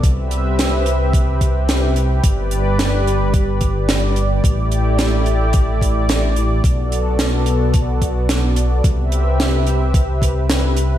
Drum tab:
HH |xxxxxxxx|xxxxxxxx|xxxxxxxx|xxxxxxxx|
SD |--o---o-|--o---o-|--o---o-|--o---o-|
BD |o---oo--|o---oo--|o---oo--|o---oo--|

HH |xxxxxxxx|
SD |--o---o-|
BD |o---oo--|